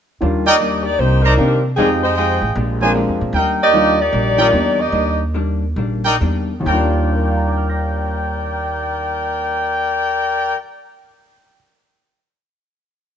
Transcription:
0.21 D#2 D#3 G3 A#3 D4 F4
0.46 A#3 D#4 G4 A#4 D5 D#5 G5
0.60 D#3 G3 A#3 D4
0.84 A#3 D#4 G4 D5
0.97 C2 C3 D#3 A#3 D4 D#4 G4 C5
1.21 G3 D4 D#4 A#4 C5 D5 A#5
1.37 C3 D#3 A#3 C4 D4 G4
1.76 F2 D#3 F3 G3 G#3 C4 D#4 F4 G4 G#4 D#5 G5
2.03 G#3 D#4 G4 C5
2.16 F3 G#3 D#4 F4 G4 G#4 D#5 G5
2.41 A1
2.55 A#1 A#2 G#3 D4 G4
2.81 F3 G#3 C4 D4 G#4 A#4 C5 G#5
2.95 A#2 G#3 D4 G4
3.08 F2
3.21 A#2
3.33 D#2 D#3 G3 A#3 D4 D#4 A#4 G5
3.62 A#3 G4 D5 D#5
3.73 D#3 G3 A#3 D4 F4
4.00 A#3 D#4 G4 D5
4.12 A#1 D#3 G3 A#3 D4
4.38 D#3 G3 A#3 D4 D#4 F4 A#4 D5 G5
4.52 E2 D#3 G3 A#3 D4
4.79 A#3 G4 D5 D#5
4.92 D#2 D#3 G3 A#3 D4
5.34 D#3 G3 A#3 D4
5.76 A#1 D#3 G3 A#3 D4
6.04 D#4 A#4 D5 G5
6.20 E2 D#3 G3 A#3 D4
6.60 D#2 D#3
6.66 D#2 G3 D4 A#4 D5 G5
6.72 A#3 F4
6.81 D4
7.13 A#4
7.20 D5
7.28 F5
7.37 A#5
7.47 D6
7.57 F6
7.70 A#6

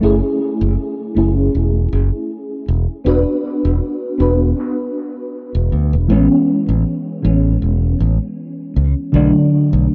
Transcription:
0.00 F#1 A3 C#4 E4 G#4
0.61 F#1
1.15 F#1 A3 C#4 E4 G#4
1.55 E1
1.92 F#1
2.68 E1
3.05 E1 B3 D4 F#4 B4
3.65 E1
4.18 E1 B3 D4 F#4 B4
5.55 E1
5.72 D2
5.93 E1
6.08 A1 E3 G#3 B3 C#4
6.69 A1
7.22 A1 E3 G#3 B3 C#4
7.62 E1
8.00 A1
8.76 C#2
9.12 B1 D3 F#3 A3 D4
9.73 B1

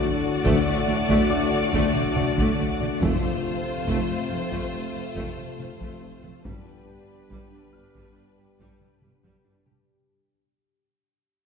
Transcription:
Already playing: A2 A3 D4 F#4 A4 C5 D5 B5
0.44 D2 D3 A3, taiko
0.66 D2 A3
0.87 D2 A3
1.08 D2 D3 A3, taiko
1.30 D2 A3 D6
1.51 D2 A3 D4
1.73 D2 D3 A3, taiko
1.95 D2 F#3 A3, taiko mid
2.16 D2 A3 D4, taiko mid
2.37 D2 D3 A3, taiko
2.58 D2 A3
2.80 D2 A3 D4, taiko mid
3.00 F1 F2 C3 F3 A3 C4 F4 A4 C5, taiko
3.23 F2 A3 C4
3.87 F1 F2 F3 A3, taiko
4.09 F2 A3 C4
4.30 F1 F2 A3 C4
4.51 F2 F3 A3, taiko
4.73 F1 F2 A3 C4
4.94 F2 A3 F4
5.15 F1 F2 F3 A3, taiko
5.37 F2 A3, taiko mid
5.59 F1 F2 A3 F4, taiko mid
5.80 F2 F3 A3, taiko
6.01 F1 F2 A3 C4
6.22 F2 A3 F4, taiko mid
6.44 G1 G2 D3 G3 B3 D4 G4 B4, taiko
6.66 G2 G3 D4
7.30 G1 G2 G3, taiko
7.52 G2 G3 D4
7.73 G1 G2 G3 D4 F6
7.95 G2 G3, taiko
8.16 G1 G2 G3 D4
8.38 G2 G3 G4
8.59 G1 G2 G3, taiko
8.80 G2 G3 B3, taiko mid
9.02 G1 G2 G3 G4, taiko mid
9.23 G2 G3, taiko
9.44 G1 G2 G3 D4
9.66 G2 G3 G4, taiko mid

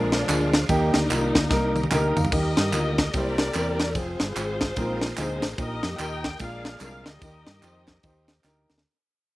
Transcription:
Already playing: A#1 A#2 D3 F3 G#3 A#3 D4 F4 A#4
0.12 snare, ride, tambourine
0.29 D2 G#3 A#3 D4 F4 G#4, clap, ride, tambourine
0.53 snare, ride, tambourine
0.68 D#2 D#3 G3 A#3 D4 D#4 G4, kick, ride, tambourine
0.74 D#4
0.94 D2, snare, ride, tambourine
1.10 C2 A#3 D#4 F4, clap, ride, tambourine
1.35 D2, kick, snare, ride, tambourine
1.50 C2 A#3 D#4 A#4, kick, snare, tambourine
1.76 high tom, tambourine
1.83 high tom
1.91 D2 A#3 D#4 G4 A#4 G5, clap, mid tom, tambourine
2.16 D#2 F5, floor tom, tambourine
2.25 floor tom
2.32 D#2 D#3 G3 A#3 D#4 G4 A#4 D#5, kick, crash, tambourine
2.57 G2, snare, ride, tambourine
2.73 D2 A#3 D#4 F4, clap, ride, tambourine
2.98 kick, snare, ride, tambourine
3.13 C2 C3 G3 A#3 C4 E4 G4 A#4 C5 D5, kick, ride, tambourine
3.38 snare, ride, tambourine
3.54 E2 A#3 C4 E4 G4 A#4, clap, ride, tambourine
3.80 snare, ride, tambourine
3.95 F1 C4 F4 G#4 C5, kick, ride, tambourine
4.20 G1, snare, ride, tambourine
4.36 G#1 C4 F4 G#4, clap, ride, tambourine
4.61 kick, snare, ride, tambourine
4.76 A#1 A#2 F3 G#3 A#3 C4 D#4 F4 G#4 A#4, kick, ride, tambourine
5.01 snare, ride, tambourine
5.17 D2 G#3 C4 D#4 F4 G#4 C5, clap, ride, tambourine
5.42 A1, snare, ride, tambourine
5.58 A#1 A#2 A#3 D#4 F4 G4 A#4 D#5, kick, ride, tambourine
5.63 G4
5.83 F2, snare, ride, tambourine
5.99 D#2 D#4 G4 A#4 D#5 G5, clap, ride, tambourine
6.24 kick, snare, ride, tambourine
6.38 A#1 A#2 F3 G#3 A#3 D4 F4 G4 G#4 A#4 D5 F5, kick, ride, tambourine
6.43 G#4
6.65 snare, ride, tambourine
6.81 C2 G#3 A#3 D4 F4 A#4 F5, clap, ride, tambourine
7.06 D2 G4 A#4 D#5, snare, ride, tambourine
7.20 D#2 D#3 A#3 D#4 G4 A#4, kick, ride, tambourine
7.47 G2, snare, ride, tambourine
7.63 F2 D#4 G4 C5, clap, ride, tambourine
7.88 kick, snare, clap, ride, tambourine
8.03 D#2 D#4 G4 C5, kick, ride, tambourine
8.28 snare, ride, tambourine
8.44 D2 D#4 G4 A#4, snare, clap, tambourine
8.69 D2, snare, tambourine
8.78 snare

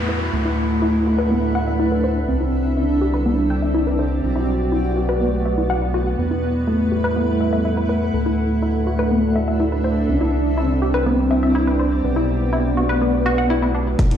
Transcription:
Already playing: E2 G3 A3 B3 E4 B4 E5 F#5, downlifter
0.09 B4
0.33 D2 A3 D4 F#4 D5 F#5
0.45 E4
0.82 E4
1.03 F#4 A4
1.19 B4 E5
1.31 B3
1.55 F#5
1.67 E5
1.79 E4
1.92 B4
2.04 C5
2.28 C2 G3 C4 E4 C5
2.41 E4
2.57 G4
2.77 D4 E4
3.01 G4
3.14 B4 D5
3.26 B3
3.50 G5
3.62 E5
3.74 E4
3.87 B4
3.99 C5
4.23 B1 A3 B3 F#4 B4
4.36 E4
4.72 E4
4.96 F#4
5.09 B4
5.21 B3
5.45 E5
5.58 E4
5.70 F#5
5.82 B4
5.94 F#4
6.18 E2 G3 B3 E4 B4 E5
6.31 E4
6.67 A3 E4
6.92 G4
7.04 B4 F#5
7.16 B3
7.41 E5
7.53 E5
7.65 E4
7.77 B4
7.89 B4
8.13 D2 A3 D4 F#4 D5 F#5
8.26 E4
8.43 E5
8.62 E4
8.80 A4
8.87 F#4
8.99 B4
9.11 B3
9.36 E5
9.48 E5
9.60 E4
9.72 B4
9.84 C5
10.09 C2 G3 C4 D4 E4 C5
10.21 E4
10.49 D5
10.54 C4 E4 G4
10.82 G4
10.94 B4
11.06 B3
11.31 E5
11.43 E5
11.55 E4
11.67 B4
11.79 C5
12.04 B1 A3 B3 F#4 B4 D5
12.16 E4
12.38 B4
12.53 E4
12.77 F#4
12.89 B4
13.01 B3
13.26 F#4
13.38 F#5
13.50 E4
13.62 E4
13.75 D4
13.99 B3 E4 G4 B4 G5, kick, closed hi-hat, riser
14.11 E2 E4, closed hi-hat

